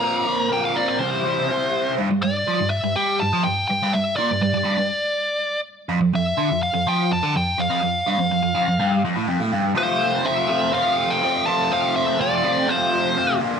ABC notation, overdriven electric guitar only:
X:1
M:4/4
L:1/16
Q:1/4=123
K:Flyd
V:1 name="Overdriven electric guitar" clef=bass
[_B,CF_B]2 [CFB]2 [B,CFB]2 [CFB]2 [C,E,G,CEc]2 [G,CEc]2 [G,CEc]4 | G,, G,, G,,2 F, G,,2 G,, G,2 G,, F, G,,2 G,, G,, | G,,2 _B,, G,, G,, G,, G,, G,, z8 | F,, F,, F,,2 D, F,,2 F,, F,2 F,, D, F,,2 F,, F,, |
F,,2 G,, F,, F,, F,, F,, F,, G,,2 F,, A,, F,, A,, G,,2 | [F,,C,F,A,CF]4 [F,,C,F,A,CF]2 [F,,C,F,A,CF]2 [F,,C,F,A,CF]4 [F,,C,F,A,CF]2 [F,,C,F,A,CF]2 | [F,,C,F,A,CF]4 [F,,C,F,A,CF]2 [F,,C,F,A,CF]2 [F,,C,F,A,CF]4 [F,,C,F,A,CF]2 [_B,,D,_B,DF]2 |]